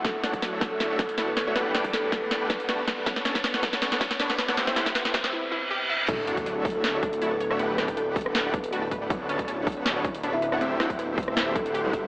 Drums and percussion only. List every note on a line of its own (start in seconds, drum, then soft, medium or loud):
0.05 kick loud
0.05 snare medium
0.05 closed hi-hat medium
0.24 snare medium
0.24 closed hi-hat medium
0.33 kick medium
0.33 closed hi-hat medium
0.42 snare medium
0.42 closed hi-hat medium
0.61 kick loud
0.61 snare medium
0.61 closed hi-hat medium
0.80 snare medium
0.80 closed hi-hat medium
0.99 kick loud
0.99 snare medium
0.99 closed hi-hat medium
1.09 closed hi-hat medium
1.18 snare medium
1.18 closed hi-hat medium
1.37 snare medium
1.37 closed hi-hat medium
1.56 snare medium
1.56 closed hi-hat medium
1.75 snare medium
1.75 closed hi-hat medium
1.84 kick medium
1.84 closed hi-hat medium
1.93 snare medium
1.93 closed hi-hat medium
2.12 kick loud
2.12 snare medium
2.12 closed hi-hat medium
2.31 snare medium
2.31 closed hi-hat medium
2.50 kick loud
2.50 snare medium
2.50 closed hi-hat medium
2.60 closed hi-hat medium
2.69 snare medium
2.69 closed hi-hat medium
2.88 kick medium
2.88 snare medium
2.88 closed hi-hat medium
3.06 kick loud
3.06 snare medium
3.06 closed hi-hat medium
3.16 snare medium
3.25 snare loud
3.25 closed hi-hat medium
3.35 kick medium
3.35 snare medium
3.35 closed hi-hat medium
3.44 snare loud
3.44 closed hi-hat medium
3.54 snare medium
3.63 kick loud
3.63 snare medium
3.63 closed hi-hat medium
3.73 snare medium
3.82 snare loud
3.82 closed hi-hat medium
3.92 snare medium
4.01 kick loud
4.01 snare medium
4.01 closed hi-hat medium
4.11 snare medium
4.11 closed hi-hat medium
4.20 snare medium
4.20 closed hi-hat medium
4.30 snare medium
4.38 snare loud
4.38 closed hi-hat medium
4.49 snare medium
4.57 snare loud
4.57 closed hi-hat medium
4.67 snare medium
4.76 snare loud
4.76 closed hi-hat medium
4.86 kick medium
4.86 snare medium
4.86 closed hi-hat medium
4.95 snare loud
4.95 closed hi-hat medium
5.05 snare medium
5.14 kick loud
5.14 snare loud
5.14 closed hi-hat medium
5.24 snare loud
6.08 kick loud
6.08 closed hi-hat medium
6.08 crash loud
6.27 closed hi-hat medium
6.37 kick medium
6.37 closed hi-hat medium
6.46 closed hi-hat medium
6.65 kick loud
6.65 open hi-hat medium
6.70 closed hi-hat medium
6.84 snare loud
6.84 closed hi-hat medium
7.03 kick loud
7.03 closed hi-hat medium
7.13 closed hi-hat medium
7.22 closed hi-hat medium
7.41 closed hi-hat medium
7.51 cross-stick medium
7.59 closed hi-hat medium
7.78 cross-stick medium
7.78 snare medium
7.78 closed hi-hat medium
7.88 kick medium
7.88 closed hi-hat medium
7.97 closed hi-hat medium
8.16 kick loud
8.16 open hi-hat medium
8.21 closed hi-hat medium
8.26 cross-stick medium
8.35 snare loud
8.35 closed hi-hat medium
8.54 kick loud
8.54 closed hi-hat medium
8.64 closed hi-hat medium
8.73 closed hi-hat medium
8.91 kick medium
8.91 closed hi-hat medium
9.10 kick loud
9.10 closed hi-hat medium
9.29 closed hi-hat medium
9.39 kick medium
9.39 closed hi-hat medium
9.48 closed hi-hat medium
9.67 kick loud
9.67 open hi-hat medium
9.72 closed hi-hat medium
9.86 snare loud
9.86 closed hi-hat medium
10.05 kick loud
10.05 closed hi-hat medium
10.15 closed hi-hat medium
10.23 closed hi-hat medium
10.42 closed hi-hat medium
10.52 cross-stick medium
10.61 closed hi-hat medium
10.80 cross-stick medium
10.80 snare medium
10.80 closed hi-hat medium
10.90 kick medium
10.90 closed hi-hat medium
10.99 closed hi-hat medium
11.18 kick loud
11.18 open hi-hat medium
11.23 closed hi-hat medium
11.28 cross-stick medium
11.37 snare loud
11.37 closed hi-hat medium
11.56 kick loud
11.56 closed hi-hat medium
11.66 closed hi-hat medium
11.75 closed hi-hat medium
11.93 kick medium
11.93 closed hi-hat medium